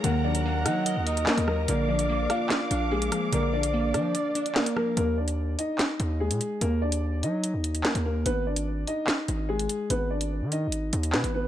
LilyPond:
<<
  \new Staff \with { instrumentName = "String section" } { \time 4/4 \key ees \minor \tempo 4 = 146 << { <ges' bes''>1 | <f'' d'''>1~ | <f'' d'''>1 | r1 |
r1 | r1 | r1 | } \\ { bes'1~ | bes'1~ | bes'1 | r1 |
r1 | r1 | r1 | } >> }
  \new Staff \with { instrumentName = "Soft synth lead" } { \time 4/4 \key ees \minor ges''2~ ges''8 ees''4. | d''2~ d''8 f''8 r4 | d''2.~ d''8 bes'8 | r1 |
r1 | r1 | r1 | }
  \new Staff \with { instrumentName = "Grand piano" } { \time 4/4 \key ees \minor <bes bes'>8 <d' d''>4 <ees' ees''>4. <bes bes'>8 <bes bes'>8 | <bes bes'>8 <d' d''>4 <f' f''>4. <aes aes'>4 | <bes bes'>8 <d' d''>4 <d' d''>4. <bes bes'>8 <bes bes'>8 | <bes bes'>8 <d' d''>4 <ees' ees''>4. <aes aes'>4 |
<bes bes'>8 <d' d''>4 <ees' ees''>4. <bes bes'>8 <bes bes'>8 | <ces' ces''>8 <d' d''>4 <ees' ees''>4. <aes aes'>4 | <ces' ces''>8 <d' d''>4 <ees' ees''>4. <ces' ces''>8 <ces' ces''>8 | }
  \new Staff \with { instrumentName = "Synth pluck" } { \time 4/4 \key ees \minor <ees ges bes ees' ees''>8 ges8 bes8 ees'8 ees''8 ees'8 bes8 ges8 | d8 f8 bes8 d'8 d''8 d'8 bes8 f8 | d8 f8 bes8 d'8 d''8 d'8 bes8 f8 | r1 |
r1 | r1 | r1 | }
  \new Staff \with { instrumentName = "808-style bass" } { \clef bass \time 4/4 \key ees \minor ees,4. ges8. ees,8. r16 ees,8. | bes,,4. r4 bes,,4 r8 | bes,,4. f8 r2 | ees,4. r4 ees,8. bes,16 r8 |
ees,4. ges8. ees,8. r16 ees,8. | aes,,4. r4 aes,,4 r8 | aes,,4~ aes,,16 ees8~ ees32 aes,,8~ aes,,32 ees,8 ces16 aes,,8. | }
  \new DrumStaff \with { instrumentName = "Drums" } \drummode { \time 4/4 hh8. hh16 r8 <hh ss>8 hh8 hh16 hh16 <hc sn>16 hh16 ss8 | hh8. hh16 r8 <hh ss>8 <hc sn>8 hh8 r16 hh16 <hh ss>8 | hh8. hh16 r8 <hh ss>8 hh8 hh16 hh16 <hc sn>16 hh16 ss8 | hh8. hh16 r8 hh8 <hc sn>8 hh8 r16 hh16 hh8 |
hh8. hh16 r8 hh8 hh8 hh16 hh16 <hc sn>16 hh8. | hh8. hh16 r8 hh8 <hc sn>8 hh8 r16 hh16 hh8 | hh8. hh16 r8 hh8 hh8 hh16 hh16 <hc sn>16 hh8. | }
>>